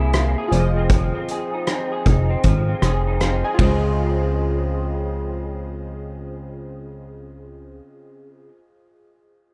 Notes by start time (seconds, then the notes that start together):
Already playing: C2 C3 A#3 E4 G#4 A#4 D#5
0.00 E4
0.13 A#3, cross-stick, closed hi-hat
0.38 G#4
0.48 F1 F4 G#4 C5, closed hi-hat
0.53 F3 D5
0.60 D#5
0.76 C4
0.90 F3, kick, closed hi-hat
1.15 C4
1.28 G#4, closed hi-hat
1.54 D#4
1.67 C4, cross-stick, closed hi-hat
1.92 G#4
2.06 F1 D#4, kick, closed hi-hat
2.30 C4
2.43 G#1 F3, kick, closed hi-hat
2.68 C4
2.82 F1 G#4, cross-stick, closed hi-hat
3.07 D#4
3.20 C4 F5 C6, cross-stick, closed hi-hat
3.44 G#4 D#5 G#5
3.54 C#3 F4 G#4
3.59 C#2 C4 C5, kick, ride
3.63 F4 G#4 D#5